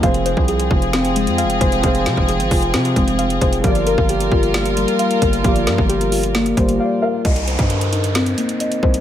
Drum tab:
HH |xxx-xx-xxxxxxxxx|xxx-xxoxxxxxxxxx|xxx-xx-xxxxxxxxx|xxx-xxoxxxxx----|
SD |--------o-------|--o-----o-------|--------o-------|--o-----o-------|
BD |o--o--o-------o-|o--o--o---o---o-|o--o--o-------o-|o--o------o-----|

HH |xxxxxxxxxxxxxx-x|
SD |--------o-------|
BD |o--o----------o-|